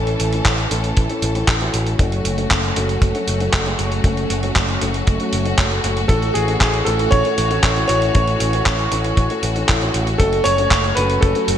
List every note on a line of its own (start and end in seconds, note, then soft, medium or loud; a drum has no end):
0.00 0.14 A1 medium
0.00 0.30 A2 medium
0.00 1.95 E3 medium
0.00 0.30 A3 medium
0.00 10.16 A3 medium
0.00 0.30 C#4 medium
0.00 1.95 C#4 medium
0.00 0.30 E4 medium
0.00 0.30 A4 loud
0.00 1.95 A4 medium
0.07 closed hi-hat soft
0.20 0.40 A1 medium
0.20 closed hi-hat medium
0.33 0.68 A2 medium
0.33 0.68 A3 medium
0.33 0.68 C#4 medium
0.33 0.68 E4 medium
0.33 0.68 A4 medium
0.33 closed hi-hat soft
0.45 0.65 A1 medium
0.45 kick loud
0.45 clap loud
0.45 closed hi-hat medium
0.58 closed hi-hat soft
0.71 0.91 A1 medium
0.71 1.07 A2 medium
0.71 1.07 A3 medium
0.71 1.07 C#4 medium
0.71 1.07 E4 medium
0.71 1.07 A4 loud
0.71 closed hi-hat medium
0.84 closed hi-hat soft
0.97 1.07 A1 medium
0.97 kick loud
0.97 closed hi-hat medium
1.10 1.32 A2 medium
1.10 1.32 A3 medium
1.10 1.32 C#4 medium
1.10 1.32 E4 medium
1.10 1.32 A4 medium
1.10 closed hi-hat soft
1.22 1.42 A1 medium
1.22 closed hi-hat medium
1.35 1.58 A2 medium
1.35 1.58 A3 medium
1.35 1.58 C#4 medium
1.35 1.58 E4 medium
1.35 1.58 A4 medium
1.35 closed hi-hat soft
1.48 1.68 A1 medium
1.48 kick loud
1.48 clap loud
1.48 closed hi-hat medium
1.61 1.96 A2 medium
1.61 1.96 A3 medium
1.61 1.96 C#4 medium
1.61 1.96 E4 medium
1.61 1.96 F#4 medium
1.61 closed hi-hat soft
1.74 1.93 A1 medium
1.74 closed hi-hat medium
1.87 closed hi-hat soft
1.99 2.19 F#1 medium
1.99 6.06 F#3 medium
1.99 2.35 A3 medium
1.99 2.35 C#4 medium
1.99 6.06 C#4 medium
1.99 2.35 F#4 medium
1.99 11.58 F#4 medium
1.99 2.35 A4 loud
1.99 kick loud
1.99 closed hi-hat medium
2.12 closed hi-hat soft
2.25 2.45 F#1 medium
2.25 closed hi-hat medium
2.38 2.73 A3 medium
2.38 2.73 C#4 medium
2.38 2.73 F#4 medium
2.38 2.73 A4 medium
2.38 closed hi-hat soft
2.51 2.71 F#1 medium
2.51 kick loud
2.51 clap loud
2.51 closed hi-hat medium
2.64 closed hi-hat soft
2.76 2.96 F#1 medium
2.76 3.12 A3 medium
2.76 3.12 C#4 medium
2.76 3.12 F#4 medium
2.76 3.12 A4 loud
2.76 closed hi-hat medium
2.89 closed hi-hat soft
3.02 3.12 F#1 medium
3.02 kick loud
3.02 closed hi-hat medium
3.15 3.37 A3 medium
3.15 3.37 C#4 medium
3.15 3.37 F#4 medium
3.15 3.37 A4 medium
3.15 closed hi-hat soft
3.28 3.47 F#1 medium
3.28 closed hi-hat medium
3.40 3.63 A3 medium
3.40 3.63 C#4 medium
3.40 3.63 F#4 medium
3.40 3.63 A4 loud
3.40 closed hi-hat soft
3.53 3.73 F#1 medium
3.53 kick loud
3.53 clap loud
3.53 closed hi-hat medium
3.66 4.01 A3 medium
3.66 4.01 C#4 medium
3.66 4.01 F#4 medium
3.66 4.01 G#4 loud
3.66 closed hi-hat soft
3.79 3.99 F#1 medium
3.79 closed hi-hat medium
3.92 closed hi-hat soft
4.04 4.24 F#1 loud
4.04 4.40 A3 medium
4.04 4.40 C#4 medium
4.04 4.40 F#4 medium
4.04 4.40 A4 loud
4.04 kick loud
4.04 closed hi-hat medium
4.17 closed hi-hat soft
4.30 4.50 F#1 medium
4.30 closed hi-hat medium
4.43 4.78 A3 medium
4.43 4.78 C#4 medium
4.43 4.78 F#4 medium
4.43 4.78 A4 medium
4.43 closed hi-hat soft
4.56 4.76 F#1 medium
4.56 kick loud
4.56 clap loud
4.56 closed hi-hat medium
4.69 closed hi-hat soft
4.81 5.01 F#1 medium
4.81 5.17 A3 medium
4.81 5.17 C#4 medium
4.81 5.17 F#4 medium
4.81 5.17 A4 loud
4.81 closed hi-hat medium
4.94 closed hi-hat soft
5.07 5.17 F#1 medium
5.07 kick loud
5.07 closed hi-hat medium
5.20 5.42 A3 medium
5.20 5.42 C#4 medium
5.20 5.42 F#4 medium
5.20 5.42 A4 medium
5.20 closed hi-hat soft
5.33 5.53 F#1 medium
5.33 closed hi-hat medium
5.45 5.81 A3 medium
5.45 5.81 C#4 medium
5.45 5.81 F#4 medium
5.45 5.81 A4 loud
5.45 closed hi-hat soft
5.58 5.78 F#1 medium
5.58 kick loud
5.58 clap loud
5.58 closed hi-hat medium
5.71 closed hi-hat soft
5.84 6.04 F#1 medium
5.84 6.06 A2 medium
5.84 6.06 A3 medium
5.84 6.06 C#4 medium
5.84 6.06 F#4 medium
5.84 6.06 A4 medium
5.84 closed hi-hat medium
5.97 closed hi-hat soft
6.08 6.29 A1 loud
6.08 6.45 A2 medium
6.08 10.16 E3 medium
6.08 6.45 A3 medium
6.08 6.45 C#4 medium
6.08 11.58 C#4 medium
6.08 6.45 E4 medium
6.08 6.33 A4 loud
6.08 6.45 A4 loud
6.08 kick loud
6.08 closed hi-hat medium
6.22 closed hi-hat soft
6.34 6.55 A1 medium
6.34 6.58 G#4 medium
6.34 closed hi-hat medium
6.48 6.83 A2 medium
6.48 6.83 A3 medium
6.48 6.83 C#4 medium
6.48 6.83 E4 medium
6.48 6.83 A4 medium
6.48 closed hi-hat soft
6.60 6.81 A1 medium
6.60 6.87 G#4 medium
6.60 kick loud
6.60 clap loud
6.60 closed hi-hat medium
6.74 closed hi-hat soft
6.85 7.06 A1 medium
6.85 7.22 A2 medium
6.85 7.22 A3 medium
6.85 7.22 C#4 medium
6.85 7.22 E4 medium
6.85 7.12 A4 medium
6.85 7.22 A4 loud
6.85 closed hi-hat medium
6.99 closed hi-hat soft
7.11 7.22 A1 medium
7.11 7.86 C#5 loud
7.11 kick loud
7.11 closed hi-hat medium
7.25 7.48 A2 medium
7.25 7.48 A3 medium
7.25 7.48 C#4 medium
7.25 7.48 E4 medium
7.25 7.48 A4 medium
7.25 closed hi-hat soft
7.38 7.58 A1 medium
7.38 closed hi-hat medium
7.51 7.73 A2 medium
7.51 7.73 A3 medium
7.51 7.73 C#4 medium
7.51 7.73 E4 medium
7.51 7.73 A4 loud
7.51 closed hi-hat soft
7.63 7.83 A1 medium
7.63 kick loud
7.63 clap loud
7.63 closed hi-hat medium
7.76 8.12 A2 medium
7.76 8.12 A3 medium
7.76 8.12 C#4 medium
7.76 8.12 E4 medium
7.76 8.12 F#4 medium
7.76 closed hi-hat soft
7.88 8.09 A1 medium
7.88 9.38 C#5 loud
7.88 closed hi-hat medium
8.02 closed hi-hat soft
8.15 8.35 A1 loud
8.15 8.50 A2 medium
8.15 8.50 A3 medium
8.15 8.50 C#4 medium
8.15 8.50 E4 medium
8.15 8.50 A4 loud
8.15 kick loud
8.15 closed hi-hat medium
8.28 closed hi-hat soft
8.40 8.60 A1 medium
8.40 closed hi-hat medium
8.53 8.89 A2 medium
8.53 8.89 A3 medium
8.53 8.89 C#4 medium
8.53 8.89 E4 medium
8.53 8.89 A4 medium
8.53 closed hi-hat soft
8.66 8.86 A1 medium
8.66 kick loud
8.66 clap loud
8.66 closed hi-hat medium
8.79 closed hi-hat soft
8.92 9.11 A1 medium
8.92 9.27 A2 medium
8.92 9.27 A3 medium
8.92 9.27 C#4 medium
8.92 9.27 E4 medium
8.92 9.27 A4 loud
8.92 closed hi-hat medium
9.04 closed hi-hat soft
9.17 9.27 A1 medium
9.17 kick loud
9.17 closed hi-hat medium
9.30 9.53 A2 medium
9.30 9.53 A3 medium
9.30 9.53 C#4 medium
9.30 9.53 E4 medium
9.30 9.53 A4 medium
9.30 closed hi-hat soft
9.43 9.63 A1 medium
9.43 closed hi-hat medium
9.56 9.78 A2 medium
9.56 9.78 A3 medium
9.56 9.78 C#4 medium
9.56 9.78 E4 medium
9.56 9.78 A4 loud
9.56 closed hi-hat soft
9.69 9.89 A1 medium
9.69 kick loud
9.69 clap loud
9.69 closed hi-hat medium
9.81 10.17 A2 medium
9.81 10.17 A3 medium
9.81 10.17 C#4 medium
9.81 10.17 E4 medium
9.81 10.17 F#4 loud
9.81 closed hi-hat soft
9.94 10.14 A1 medium
9.94 closed hi-hat medium
10.07 closed hi-hat soft
10.18 10.40 F#1 loud
10.18 11.58 F#3 medium
10.18 11.58 A3 medium
10.18 10.55 A3 medium
10.18 10.55 C#4 medium
10.18 10.55 F#4 medium
10.18 10.46 A4 loud
10.18 10.55 A4 loud
10.18 kick loud
10.18 closed hi-hat medium
10.33 closed hi-hat soft
10.44 10.65 F#1 medium
10.44 10.98 C#5 loud
10.44 closed hi-hat medium
10.58 10.94 A3 medium
10.58 10.94 C#4 medium
10.58 10.94 F#4 medium
10.58 10.94 A4 medium
10.58 closed hi-hat soft
10.71 10.91 F#1 medium
10.71 kick loud
10.71 clap loud
10.71 closed hi-hat medium
10.84 closed hi-hat soft
10.95 11.17 F#1 medium
10.95 11.32 A3 medium
10.95 11.32 C#4 medium
10.95 11.32 F#4 medium
10.95 11.32 A4 loud
10.95 11.22 B4 medium
10.95 closed hi-hat medium
11.10 closed hi-hat soft
11.21 11.32 F#1 medium
11.21 11.58 A4 medium
11.21 kick loud
11.21 closed hi-hat medium
11.35 11.58 A3 medium
11.35 11.58 C#4 medium
11.35 11.58 F#4 medium
11.35 11.58 A4 medium
11.35 closed hi-hat soft
11.48 11.58 F#1 medium
11.48 closed hi-hat medium